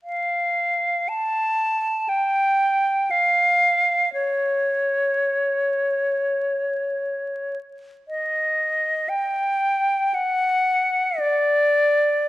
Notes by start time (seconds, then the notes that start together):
0.04 F5
1.08 A5
2.09 G5
3.11 F5
4.13 C#5
8.08 D#5
9.09 G5
10.14 F#5
11.19 D5